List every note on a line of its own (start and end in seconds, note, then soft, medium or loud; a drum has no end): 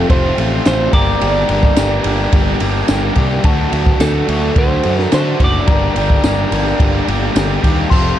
0.00 0.10 F3 loud
0.00 0.11 A3 medium
0.00 0.10 C4 loud
0.00 0.11 F4 loud
0.00 3.41 G4 medium
0.00 0.92 C5 medium
0.00 0.93 F5 medium
0.00 3.41 G5 medium
0.00 0.99 A5 loud
0.10 0.31 F1 loud
0.10 0.37 F2 loud
0.10 0.38 C3 loud
0.10 0.38 F3 loud
0.10 0.38 A3 loud
0.10 0.38 C4 loud
0.10 0.38 F4 loud
0.10 0.66 C5 loud
0.10 kick loud
0.10 ride loud
0.38 0.59 A1 medium
0.38 0.64 F2 medium
0.38 0.65 C3 medium
0.38 0.65 F3 medium
0.38 0.66 A3 medium
0.38 0.65 C4 medium
0.38 0.66 F4 medium
0.38 ride medium
0.65 0.87 A1 loud
0.65 0.92 F2 loud
0.65 0.92 C3 medium
0.65 0.92 F3 medium
0.65 0.93 A3 medium
0.65 0.92 C4 medium
0.65 0.93 F4 medium
0.65 0.94 C5 loud
0.65 snare loud
0.65 ride loud
0.65 tambourine loud
0.93 1.14 G1 medium
0.93 1.19 G2 medium
0.93 1.20 D3 medium
0.93 1.20 G3 loud
0.93 1.21 A#3 loud
0.93 1.22 D4 loud
0.93 1.21 G4 loud
0.93 3.41 A#4 medium
0.93 5.63 D5 medium
0.93 2.57 D5 loud
0.93 3.52 A#5 loud
0.93 kick medium
0.93 ride medium
1.20 1.43 G1 loud
1.20 1.48 G2 loud
1.20 1.48 D3 loud
1.20 1.49 G3 loud
1.20 1.49 A#3 loud
1.20 1.50 D4 loud
1.20 1.50 G4 loud
1.20 ride loud
1.49 1.70 G1 loud
1.49 1.75 G2 medium
1.49 1.76 D3 medium
1.49 1.76 G3 medium
1.49 1.76 A#3 medium
1.49 1.78 D4 medium
1.49 1.77 G4 loud
1.49 ride medium
1.63 kick medium
1.76 1.98 G1 medium
1.76 2.03 G2 medium
1.76 2.03 D3 medium
1.76 2.04 G3 medium
1.76 2.04 A#3 loud
1.76 2.06 D4 medium
1.76 2.05 G4 medium
1.76 snare loud
1.76 ride loud
1.76 tambourine loud
2.04 2.26 G1 medium
2.04 2.32 G2 medium
2.04 2.32 D3 medium
2.04 2.32 G3 medium
2.04 2.33 A#3 medium
2.04 2.34 D4 loud
2.04 2.33 G4 medium
2.04 ride medium
2.33 2.54 G1 loud
2.33 2.59 G2 loud
2.33 2.60 D3 loud
2.33 2.60 G3 loud
2.33 2.60 A#3 loud
2.33 2.61 D4 loud
2.33 2.61 G4 loud
2.33 kick loud
2.33 ride loud
2.60 2.82 G1 medium
2.60 2.87 G2 medium
2.60 2.88 D3 medium
2.60 2.88 G3 medium
2.60 2.88 A#3 medium
2.60 2.89 D4 medium
2.60 2.89 G4 loud
2.60 ride medium
2.88 3.10 G1 medium
2.88 3.15 G2 medium
2.88 3.16 D3 loud
2.88 3.16 G3 loud
2.88 3.16 A#3 loud
2.88 3.17 D4 medium
2.88 3.17 G4 loud
2.88 snare loud
2.88 ride loud
2.88 tambourine medium
3.16 3.37 C2 medium
3.16 3.42 G2 medium
3.16 3.43 D3 medium
3.16 3.43 G3 medium
3.16 3.43 A#3 medium
3.16 3.45 D4 medium
3.16 3.43 G4 medium
3.16 kick medium
3.16 ride medium
3.44 3.65 D2 medium
3.44 3.70 D3 loud
3.44 3.71 F#3 loud
3.44 3.73 A3 loud
3.44 3.73 D4 loud
3.44 3.72 F#4 loud
3.44 5.66 A4 medium
3.44 5.74 A5 loud
3.44 kick loud
3.44 ride loud
3.48 5.67 F#4 medium
3.72 3.93 D2 loud
3.72 3.98 D3 medium
3.72 3.99 F#3 medium
3.72 4.00 A3 medium
3.72 4.00 D4 loud
3.72 4.00 F#4 loud
3.72 ride medium
3.86 kick medium
4.00 4.21 D2 loud
4.00 4.27 D3 medium
4.00 4.27 F#3 medium
4.00 4.28 A3 medium
4.00 4.29 D4 medium
4.00 4.28 F#4 medium
4.00 4.58 A4 medium
4.00 snare loud
4.00 ride medium
4.00 tambourine loud
4.28 4.49 D2 loud
4.28 4.55 D3 medium
4.28 4.56 F#3 medium
4.28 4.57 A3 medium
4.28 4.56 D4 loud
4.28 4.56 F#4 loud
4.28 ride medium
4.56 4.77 D2 medium
4.56 4.83 D3 loud
4.56 4.84 F#3 loud
4.56 4.85 A3 loud
4.56 4.85 D4 loud
4.56 4.85 F#4 loud
4.56 5.02 C5 loud
4.56 kick loud
4.56 ride medium
4.83 5.05 F#2 medium
4.83 5.11 D3 medium
4.83 5.11 F#3 medium
4.83 5.12 A3 medium
4.83 5.12 D4 medium
4.83 5.13 F#4 medium
4.83 ride medium
4.99 5.13 A#4 loud
4.99 snare soft
5.12 5.39 D3 medium
5.12 5.33 D3 loud
5.12 5.40 F#3 medium
5.12 5.41 A3 medium
5.12 5.40 D4 loud
5.12 5.41 F#4 medium
5.12 5.42 C5 loud
5.12 snare loud
5.12 ride loud
5.12 tambourine medium
5.40 5.61 F#1 medium
5.40 5.66 D3 medium
5.40 5.66 F#3 medium
5.40 5.69 A3 medium
5.40 5.67 D4 medium
5.40 5.67 F#4 loud
5.40 kick medium
5.40 ride medium
5.44 7.05 D5 loud
5.67 5.89 G1 loud
5.67 5.95 G2 loud
5.67 5.95 D3 loud
5.67 5.97 G3 loud
5.67 5.96 A#3 loud
5.67 5.96 D4 loud
5.67 5.97 G4 loud
5.67 8.19 G4 medium
5.67 7.90 A#4 medium
5.67 7.90 D5 medium
5.67 7.59 A#5 loud
5.67 kick loud
5.67 ride loud
5.96 6.17 G1 loud
5.96 6.22 G2 medium
5.96 6.23 D3 medium
5.96 6.24 G3 medium
5.96 6.23 A#3 medium
5.96 6.23 D4 medium
5.96 6.25 G4 loud
5.96 ride medium
6.10 kick medium
6.23 6.44 G1 loud
6.23 6.51 G2 medium
6.23 6.51 D3 medium
6.23 6.52 G3 medium
6.23 6.51 A#3 medium
6.23 6.52 D4 medium
6.23 6.53 G4 medium
6.23 snare loud
6.23 ride medium
6.23 tambourine medium
6.51 6.72 G1 loud
6.51 6.78 G2 medium
6.51 6.79 D3 loud
6.51 6.79 G3 medium
6.51 6.79 A#3 loud
6.51 6.80 D4 loud
6.51 6.80 G4 medium
6.51 ride medium
6.79 7.00 G1 loud
6.79 7.06 G2 loud
6.79 7.06 D3 loud
6.79 7.07 G3 loud
6.79 7.07 A#3 loud
6.79 7.08 D4 loud
6.79 7.09 G4 loud
6.79 kick loud
6.79 ride loud
7.07 7.28 G1 medium
7.07 7.33 G2 medium
7.07 7.34 D3 medium
7.07 7.35 G3 medium
7.07 7.35 A#3 medium
7.07 7.35 D4 medium
7.07 7.36 G4 medium
7.07 ride medium
7.35 7.56 G1 loud
7.35 7.61 G2 medium
7.35 7.62 D3 medium
7.35 7.63 G3 medium
7.35 7.62 A#3 medium
7.35 7.63 D4 loud
7.35 7.63 G4 loud
7.35 snare loud
7.35 ride loud
7.35 tambourine loud
7.62 7.84 D#2 medium
7.62 7.89 G2 medium
7.62 7.89 D3 medium
7.62 7.91 G3 medium
7.62 7.89 A#3 medium
7.62 7.90 D4 medium
7.62 7.92 G4 medium
7.62 kick medium
7.62 ride medium
7.90 8.12 F1 loud
7.90 8.18 F3 loud
7.90 8.17 A3 medium
7.90 8.18 C4 loud
7.90 8.19 F4 loud
7.90 8.19 A4 loud
7.90 8.19 C5 medium
7.90 8.19 F5 medium
7.90 8.19 C6 loud
7.90 kick loud
7.90 crash loud